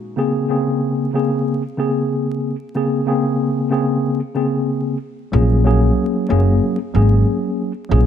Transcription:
0.00 0.13 A#2 medium
0.00 0.13 G#3 medium
0.00 0.13 A#3 medium
0.00 0.13 D#4 medium
0.00 0.13 F#4 medium
0.16 0.47 C#3 medium
0.16 0.47 A#3 medium
0.16 0.48 C4 medium
0.16 0.48 G#4 loud
0.48 1.09 C#3 medium
0.48 1.10 A#3 medium
0.48 1.10 C4 medium
0.48 1.11 G#4 medium
1.13 1.61 C#3 medium
1.13 1.61 A#3 medium
1.13 1.62 C4 medium
1.13 1.62 G#4 loud
1.77 2.54 C#3 medium
1.77 2.55 A#3 medium
1.77 2.55 C4 medium
1.77 2.56 G#4 loud
2.74 3.05 C#3 medium
2.74 3.05 A#3 medium
2.74 3.06 C4 medium
2.74 3.06 G#4 loud
3.06 3.67 C#3 medium
3.06 3.68 A#3 medium
3.06 3.68 C4 medium
3.06 3.69 G#4 medium
3.70 4.18 C#3 medium
3.70 4.19 A#3 medium
3.70 4.19 C4 medium
3.70 4.20 G#4 loud
4.34 4.96 C#3 medium
4.34 4.96 A#3 medium
4.34 4.97 C4 medium
4.34 4.97 G#4 loud
5.32 5.89 A#1 loud
5.32 5.63 F#3 medium
5.32 5.63 A#3 medium
5.32 5.64 C#4 medium
5.32 5.64 G#4 loud
5.64 6.25 F#3 medium
5.64 6.26 A#3 medium
5.64 6.26 C#4 medium
5.64 6.27 G#4 loud
6.29 6.58 F#1 medium
6.29 6.77 F#3 loud
6.29 6.77 A#3 medium
6.29 6.78 C#4 medium
6.29 6.78 G#4 loud
6.94 7.23 G#1 medium
6.94 7.71 F#3 medium
6.94 7.71 A#3 medium
6.94 7.71 C#4 medium
6.94 7.72 G#4 loud
7.89 8.06 A#1 loud
7.89 8.06 F#3 medium
7.89 8.06 A#3 medium
7.89 8.06 C#4 medium
7.89 8.06 G#4 loud

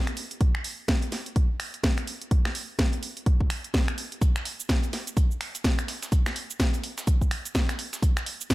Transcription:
0.07 finger snap medium
0.07 closed hi-hat medium
0.17 open hi-hat loud
0.31 closed hi-hat medium
0.41 kick loud
0.41 closed hi-hat medium
0.55 finger snap medium
0.64 open hi-hat loud
0.88 kick loud
0.88 snare loud
0.88 closed hi-hat medium
1.02 closed hi-hat soft
1.12 snare soft
1.12 open hi-hat medium
1.26 closed hi-hat soft
1.36 kick loud
1.36 closed hi-hat medium
1.60 finger snap medium
1.60 open hi-hat loud
1.74 closed hi-hat soft
1.84 kick loud
1.84 snare loud
1.84 closed hi-hat medium
1.98 finger snap medium
1.98 closed hi-hat medium
2.07 open hi-hat loud
2.22 closed hi-hat medium
2.31 kick loud
2.31 closed hi-hat medium
2.45 finger snap medium
2.45 snare soft
2.55 open hi-hat loud
2.79 kick loud
2.79 snare loud
2.79 closed hi-hat medium
2.93 closed hi-hat soft
3.03 open hi-hat medium
3.17 closed hi-hat soft
3.26 kick loud
3.26 closed hi-hat medium
3.41 kick medium
3.50 finger snap medium
3.50 open hi-hat loud
3.64 closed hi-hat soft
3.74 kick loud
3.74 snare loud
3.74 closed hi-hat medium
3.88 finger snap medium
3.88 closed hi-hat medium
3.98 open hi-hat loud
4.12 closed hi-hat medium
4.22 kick loud
4.22 closed hi-hat medium
4.22 shaker medium
4.36 finger snap medium
4.36 snare soft
4.36 shaker soft
4.45 closed hi-hat medium
4.45 open hi-hat loud
4.60 shaker medium
4.69 kick loud
4.69 snare loud
4.69 closed hi-hat medium
4.69 shaker medium
4.83 closed hi-hat soft
4.83 shaker soft
4.93 snare soft
4.93 closed hi-hat medium
4.93 open hi-hat medium
5.07 closed hi-hat medium
5.07 shaker medium
5.17 kick loud
5.17 closed hi-hat medium
5.17 shaker medium
5.31 shaker soft
5.41 finger snap medium
5.41 closed hi-hat medium
5.41 open hi-hat loud
5.55 closed hi-hat soft
5.55 closed hi-hat medium
5.55 shaker medium
5.64 kick loud
5.64 snare loud
5.64 closed hi-hat medium
5.64 shaker medium
5.79 finger snap medium
5.79 closed hi-hat medium
5.79 shaker soft
5.88 snare soft
5.88 closed hi-hat medium
5.88 open hi-hat medium
6.03 snare soft
6.03 closed hi-hat medium
6.03 shaker medium
6.12 kick loud
6.12 closed hi-hat medium
6.12 shaker medium
6.26 finger snap medium
6.26 snare medium
6.26 snare soft
6.26 shaker soft
6.36 closed hi-hat medium
6.36 open hi-hat loud
6.50 shaker medium
6.60 kick loud
6.60 snare loud
6.60 closed hi-hat medium
6.60 shaker medium
6.74 closed hi-hat medium
6.74 shaker soft
6.84 closed hi-hat medium
6.84 open hi-hat medium
6.98 snare medium
6.98 closed hi-hat soft
6.98 shaker medium
7.07 kick loud
7.07 closed hi-hat medium
7.07 shaker medium
7.21 kick medium
7.21 shaker soft
7.31 finger snap medium
7.31 closed hi-hat medium
7.31 open hi-hat loud
7.45 closed hi-hat soft
7.45 shaker medium
7.55 kick loud
7.55 snare loud
7.55 closed hi-hat medium
7.55 shaker medium
7.69 finger snap medium
7.69 snare medium
7.69 closed hi-hat medium
7.69 shaker soft
7.79 closed hi-hat medium
7.79 open hi-hat medium
7.93 snare soft
7.93 closed hi-hat medium
7.93 shaker medium
8.03 kick loud
8.03 closed hi-hat medium
8.03 shaker medium
8.17 finger snap medium
8.17 snare soft
8.17 shaker soft
8.26 closed hi-hat medium
8.26 open hi-hat loud
8.41 shaker medium
8.50 kick loud
8.50 snare loud
8.50 closed hi-hat medium
8.50 shaker medium

